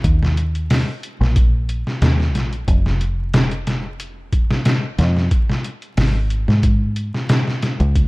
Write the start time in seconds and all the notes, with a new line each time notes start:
0.04 D#2, kick, closed hi-hat
0.23 snare
0.37 closed hi-hat
0.55 closed hi-hat
0.70 snare, open hi-hat
1.03 closed hi-hat
1.21 A#1, snare
1.36 kick, closed hi-hat
1.69 closed hi-hat
1.87 snare
2.02 D#2, snare, closed hi-hat
2.20 snare
2.35 A#1, snare, closed hi-hat
2.53 closed hi-hat
2.68 F1, kick, closed hi-hat
2.86 snare
3.01 closed hi-hat
3.34 snare, closed hi-hat
3.51 closed hi-hat
3.67 snare, closed hi-hat
4.00 closed hi-hat
4.32 kick, closed hi-hat
4.50 snare
4.65 snare, closed hi-hat
4.98 F2, snare, closed hi-hat
5.17 snare
5.31 kick, closed hi-hat
5.50 snare
5.64 closed hi-hat
5.82 closed hi-hat
5.97 G#1, snare, open hi-hat
6.30 closed hi-hat
6.48 G#2, snare
6.63 kick, closed hi-hat
6.96 closed hi-hat
7.15 snare
7.29 snare, closed hi-hat
7.48 snare
7.62 snare, closed hi-hat
7.80 C#2, closed hi-hat
7.95 kick, closed hi-hat